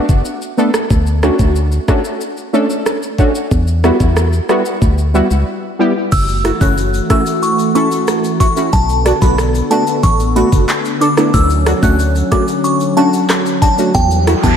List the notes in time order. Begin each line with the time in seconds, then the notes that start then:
0.09 F#1, kick, shaker
0.25 shaker
0.42 shaker
0.57 A3 B3 D4 A4, shaker
0.74 cross-stick, shaker
0.90 D2, kick, shaker
1.07 shaker
1.23 A3 C#4 D4 F#4, cross-stick, shaker
1.39 D2, kick, shaker
1.56 shaker
1.72 shaker
1.88 A3 C#4 D4 F#4, kick, cross-stick, shaker
2.04 shaker
2.21 shaker
2.37 shaker
2.53 A3 C#4 D4 A4, shaker
2.70 shaker
2.86 cross-stick, shaker
3.03 shaker
3.18 A3 C#4 D4 F#4, kick, shaker
3.35 shaker
3.51 E2, kick, shaker
3.67 shaker
3.83 G3 B3 E4 F#4, cross-stick, shaker
4.00 E2, kick, shaker
4.17 cross-stick, shaker
4.33 shaker
4.49 G3 B3 E4 F#4, cross-stick, shaker
4.65 shaker
4.82 D2, kick, shaker
4.98 shaker
5.14 G3 B3 E4 F#4, shaker
5.31 C#2, shaker
5.79 G3 B3 E4 G4
6.12 F#1 E3 A3 F#4 E6, kick, crash, shaker
6.28 shaker
6.44 E4 F#4, cross-stick, closed hi-hat, shaker
6.61 F#1 A3 C#4 E4 F#4 F#6, kick, shaker
6.78 shaker
6.94 shaker
7.10 A3 C#4 E4 F#4 E6, kick, cross-stick, closed hi-hat, shaker
7.26 shaker
7.42 C#6, shaker
7.58 shaker
7.75 A3 C#4 E4 A4 C#6, closed hi-hat, shaker
7.91 shaker
8.07 cross-stick, shaker
8.24 shaker
8.40 E4 F#4 C#6, kick, closed hi-hat, shaker
8.56 A3 C#4 E4 F#4, shaker
8.73 B1 D3 B3 A4 A5, kick, shaker
8.89 shaker
9.05 D4 F#4, cross-stick, closed hi-hat, shaker
9.22 B1 A3 B3 D4 F#4 B5, kick, shaker
9.38 cross-stick, shaker
9.55 shaker
9.70 A3 B3 D4 F#4 A5, closed hi-hat, shaker
9.87 shaker
10.03 A1 C#6, kick, shaker
10.19 shaker
10.36 A3 B3 D4 F#4 B5, closed hi-hat, shaker
10.52 F#1, kick, shaker
10.68 clap, shaker
10.85 shaker
11.01 D4 A4 D6, closed hi-hat, shaker
11.17 A3 B3 D4 E4, cross-stick, shaker
11.34 D2 F#3 C#4 E6, kick, shaker
11.50 shaker
11.66 D4 F#4, cross-stick, closed hi-hat, shaker
11.82 D2 A3 C#4 D4 F#4 F#6, kick, shaker
11.99 shaker
12.15 shaker
12.31 A3 C#4 D4 F#4 D6, kick, cross-stick, closed hi-hat, shaker
12.48 shaker
12.64 C#6, shaker
12.80 shaker
12.96 A3 C#4 D4 F#4 A5, closed hi-hat, shaker
13.13 shaker
13.29 cross-stick, clap, shaker
13.46 shaker
13.62 D4 F#4 A5, kick, closed hi-hat, shaker
13.78 A3 C#4 D4 F#4, shaker
13.95 E2 E3 G3 G5, kick, noise sweep, shaker
14.11 shaker
14.27 E4 F#4, cross-stick, closed hi-hat, shaker
14.43 E2 G3 B3 E4 G4 A5, kick, shaker